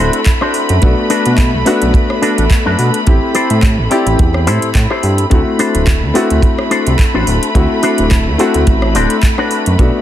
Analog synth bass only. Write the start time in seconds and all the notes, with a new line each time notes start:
0.00 D1
0.70 F#2
0.83 B1
1.26 B2
1.54 B1
1.82 B1
2.38 A1
2.66 F#2
2.79 B2
3.07 A1
3.50 A2
3.78 A1
4.06 A1
4.19 E2
4.47 A2
4.63 A2
4.75 A2
5.03 G2
5.32 D2
5.75 D1
6.03 D2
6.31 D2
6.87 C2
7.15 A1
7.28 D1
7.55 D2
7.99 D1
8.27 D2
8.55 D2
8.67 A1
8.95 D1
9.67 F#2
9.79 B1